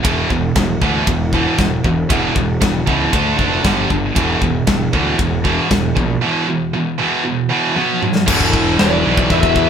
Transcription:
0.03 0.24 E1 medium
0.03 0.28 E2 medium
0.03 0.28 B2 loud
0.03 0.29 E3 medium
0.03 kick loud
0.03 ride bell medium
0.30 0.50 E1 medium
0.30 0.53 E2 medium
0.30 0.54 B2 medium
0.30 kick medium
0.56 0.75 E1 loud
0.56 0.79 E2 medium
0.56 0.79 B2 medium
0.56 kick loud
0.56 snare loud
0.56 ride bell medium
0.81 1.01 D2 loud
0.81 1.06 E2 medium
0.81 1.06 B2 medium
0.81 1.06 E3 medium
0.81 kick medium
1.07 1.46 E1 medium
1.07 1.31 E2 medium
1.07 1.31 B2 medium
1.07 kick loud
1.07 ride bell medium
1.33 1.58 E2 medium
1.33 1.58 B2 medium
1.33 1.58 E3 medium
1.33 kick medium
1.58 1.78 E1 medium
1.58 1.82 E2 medium
1.58 1.82 B2 medium
1.58 kick loud
1.58 snare medium
1.58 ride bell medium
1.84 2.04 E1 medium
1.84 2.08 E2 medium
1.84 2.08 B2 medium
1.84 kick medium
2.09 2.29 E1 loud
2.09 2.34 E2 medium
2.09 2.34 B2 medium
2.09 2.34 E3 medium
2.09 kick loud
2.09 ride bell medium
2.35 2.56 E1 medium
2.35 2.59 E2 medium
2.35 2.59 B2 medium
2.35 kick medium
2.61 2.81 E1 medium
2.61 2.84 E2 medium
2.61 2.85 B2 medium
2.61 kick loud
2.61 snare loud
2.61 ride bell medium
2.86 3.07 C#2 medium
2.86 3.11 E2 loud
2.86 3.11 B2 medium
2.86 3.11 E3 loud
2.86 kick medium
3.12 3.33 D2 medium
3.12 3.36 D3 medium
3.12 3.37 A3 medium
3.12 3.37 D4 medium
3.12 kick medium
3.12 ride bell medium
3.37 3.58 F1 medium
3.37 3.62 D3 medium
3.37 3.63 A3 medium
3.37 3.63 D4 medium
3.37 kick medium
3.63 3.84 G1 medium
3.63 3.88 G2 medium
3.63 3.88 D3 loud
3.63 3.89 G3 loud
3.63 kick loud
3.63 snare loud
3.63 ride bell medium
3.89 4.10 G1 medium
3.89 4.13 G2 medium
3.89 4.13 D3 medium
3.89 kick medium
4.15 4.35 E1 loud
4.15 4.40 E2 medium
4.15 4.40 B2 medium
4.15 4.40 E3 medium
4.15 kick loud
4.15 ride bell medium
4.41 4.61 E1 medium
4.41 4.64 E2 medium
4.41 4.65 B2 medium
4.41 kick loud
4.67 4.87 E1 medium
4.67 4.90 E2 medium
4.67 4.91 B2 medium
4.67 kick loud
4.67 snare loud
4.67 ride bell medium
4.93 5.13 D2 medium
4.93 5.17 E2 medium
4.93 5.18 B2 medium
4.93 5.18 E3 medium
4.93 kick medium
5.19 5.58 E1 medium
5.19 5.42 E2 medium
5.19 5.42 B2 medium
5.19 kick loud
5.19 ride bell medium
5.44 5.69 E2 medium
5.44 5.69 B2 medium
5.44 5.69 E3 medium
5.44 kick medium
5.70 5.90 E1 medium
5.70 5.93 E2 medium
5.70 5.93 B2 medium
5.70 kick medium
5.70 snare loud
5.70 ride bell medium
5.95 6.16 A#1 medium
5.95 6.19 E2 medium
5.95 6.19 B2 medium
5.95 kick medium
6.21 6.46 E2 medium
6.21 6.46 B2 medium
6.21 6.46 E3 medium
6.48 6.71 E2 medium
6.48 6.71 B2 medium
6.73 6.96 E2 medium
6.73 6.97 B2 medium
6.98 7.22 E2 medium
6.98 7.23 B2 medium
6.98 7.23 E3 loud
7.24 7.47 E2 medium
7.24 7.48 B2 medium
7.49 7.74 E2 medium
7.49 7.74 B2 loud
7.49 7.74 E3 loud
7.75 8.00 B2 loud
7.75 8.00 F#3 loud
7.75 8.00 B3 loud
7.75 high tom medium
8.01 8.25 B2 medium
8.01 8.25 F#3 medium
8.01 mid tom medium
8.15 snare medium
8.26 8.76 E1 loud
8.26 9.06 E2 loud
8.26 9.03 B2 loud
8.26 9.03 E3 loud
8.26 kick loud
8.26 crash loud
8.26 china medium
8.41 kick medium
8.53 kick medium
8.79 9.03 E1 loud
8.79 9.27 B4 medium
8.79 9.31 D5 loud
8.79 snare loud
8.79 china medium
9.04 9.29 B1 medium
9.04 9.70 E2 medium
9.04 9.70 B2 medium
9.04 9.70 E3 medium
9.17 kick loud
9.30 9.54 E1 medium
9.30 9.70 B4 medium
9.30 9.70 E5 loud
9.30 kick medium
9.30 china medium
9.43 kick loud
9.56 9.70 E2 loud
9.56 kick medium

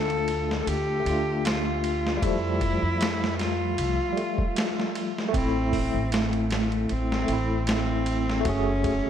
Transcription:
0.00 0.63 D2 medium
0.00 0.98 A3 medium
0.00 1.01 D4 medium
0.00 1.03 F4 loud
0.00 0.56 A4 loud
0.10 ride soft
0.28 ride medium
0.51 snare medium
0.61 0.69 A4 medium
0.66 1.01 D2 medium
0.66 1.47 G4 loud
0.66 ride medium
1.00 2.15 A3 medium
1.05 2.19 D2 medium
1.05 2.18 D4 medium
1.05 ride medium
1.09 2.20 F4 medium
1.45 2.24 F4 medium
1.45 snare loud
1.45 ride medium
1.84 ride medium
2.07 snare medium
2.17 4.10 G3 loud
2.22 2.78 F2 medium
2.22 4.12 A3 medium
2.22 3.39 E4 loud
2.22 kick loud
2.22 ride medium
2.26 4.15 F3 loud
2.61 kick medium
2.61 ride medium
2.82 3.75 F2 medium
3.01 snare loud
3.01 ride medium
3.24 snare medium
3.39 4.91 F4 loud
3.39 snare medium
3.39 ride medium
3.78 3.97 C2 medium
3.78 ride medium
4.12 5.27 G3 medium
4.17 5.27 A3 medium
4.17 ride medium
4.21 5.32 F4 medium
4.38 kick loud
4.56 snare loud
4.56 ride medium
4.80 snare soft
4.95 ride medium
5.18 snare soft
5.28 7.22 A3 medium
5.33 5.90 A1 loud
5.33 7.24 C4 medium
5.33 6.15 C4 loud
5.33 kick loud
5.33 ride medium
5.37 7.26 E4 loud
5.73 kick medium
5.73 open hi-hat medium
5.94 6.86 A1 medium
6.12 6.93 A3 medium
6.12 snare loud
6.12 ride medium
6.33 ride soft
6.51 snare loud
6.51 ride medium
6.72 ride soft
6.89 7.25 A1 medium
6.89 7.69 C4 loud
6.89 ride medium
7.12 snare medium
7.24 8.39 A3 medium
7.28 8.42 A1 medium
7.28 8.41 C4 medium
7.28 ride medium
7.33 8.43 E4 medium
7.67 snare loud
7.67 ride medium
7.71 8.49 C4 loud
8.06 ride medium
8.30 snare soft
8.40 9.10 A3 loud
8.45 9.02 F#1 loud
8.45 9.10 C#4 loud
8.45 9.10 F#4 medium
8.45 kick loud
8.45 ride medium
8.49 9.10 G#4 loud
8.84 kick medium
8.84 ride medium
9.07 9.10 F#1 medium

